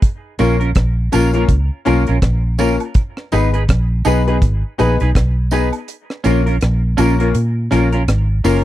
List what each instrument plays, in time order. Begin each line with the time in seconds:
0.02 kick, closed hi-hat
0.39 fingered electric bass A#1, grand piano A#3 C#4 F4 A#4, clean electric guitar C#4 F4 A#4, closed hi-hat, tambourine
0.60 clean electric guitar C#4 F4 A#4, closed hi-hat
0.75 fingered electric bass A#1, kick, cross-stick, closed hi-hat
1.12 fingered electric bass A#1, grand piano A#3 C#4 F4 A#4, clean electric guitar C#4 F4 A#4, closed hi-hat, tambourine, high woodblock
1.33 grand piano A#3 C#4 F4 A#4, clean electric guitar C#4 F4 A#4, closed hi-hat
1.49 fingered electric bass C#2, kick, closed hi-hat
1.85 fingered electric bass B1, grand piano A#3 C#4 F4 A#4, clean electric guitar C#4 F4 A#4, closed hi-hat, tambourine, high woodblock
2.07 fingered electric bass A#1, clean electric guitar C#4 F4 A#4, closed hi-hat
2.22 fingered electric bass A#1, kick, cross-stick, closed hi-hat
2.58 grand piano A#3 C#4 F4 A#4, clean electric guitar C#4 F4 A#4, closed hi-hat, tambourine
2.80 closed hi-hat, high woodblock
2.94 kick, closed hi-hat
3.17 cross-stick
3.32 fingered electric bass G#1, grand piano B3 D#4 G#4 B4, clean electric guitar D#4 G#4 B4, closed hi-hat, tambourine
3.54 clean electric guitar D#4 G#4 B4, closed hi-hat
3.69 fingered electric bass A#1, kick, cross-stick, closed hi-hat
4.05 fingered electric bass B1, grand piano B3 D#4 G#4 B4, clean electric guitar D#4 G#4 B4, closed hi-hat, tambourine, high woodblock
4.27 grand piano B3 D#4 G#4 B4, clean electric guitar D#4 G#4 B4, closed hi-hat
4.42 fingered electric bass G#1, kick, closed hi-hat
4.78 fingered electric bass A#1, grand piano B3 D#4 G#4 B4, clean electric guitar D#4 G#4 B4, closed hi-hat, tambourine, high woodblock
5.00 fingered electric bass B1, clean electric guitar D#4 G#4 B4, closed hi-hat
5.15 fingered electric bass B1, kick, cross-stick, closed hi-hat
5.51 grand piano B3 D#4 G#4 B4, clean electric guitar D#4 G#4 B4, closed hi-hat, tambourine
5.72 closed hi-hat, high woodblock
5.88 closed hi-hat
6.10 cross-stick
6.24 fingered electric bass A#1, grand piano A#3 C#4 F4 A#4, clean electric guitar C#4 F4 A#4, closed hi-hat, tambourine
6.46 clean electric guitar C#4 F4 A#4, closed hi-hat
6.61 fingered electric bass A#1, cross-stick, closed hi-hat
6.97 fingered electric bass A#1, grand piano A#3 C#4 F4 A#4, clean electric guitar C#4 F4 A#4, closed hi-hat, tambourine, high woodblock
7.19 grand piano A#3 C#4 F4 A#4, clean electric guitar C#4 F4 A#4, closed hi-hat
7.35 fingered electric bass A#2, closed hi-hat
7.71 fingered electric bass A#1, grand piano A#3 C#4 F4 A#4, clean electric guitar C#4 F4 A#4, cross-stick, closed hi-hat, tambourine, high woodblock
7.92 clean electric guitar C#4 F4 A#4, closed hi-hat
8.08 fingered electric bass G#1, cross-stick, closed hi-hat
8.44 fingered electric bass F#1, grand piano A#3 C#4 F4 A#4, clean electric guitar C#4 F4 A#4, open hi-hat, tambourine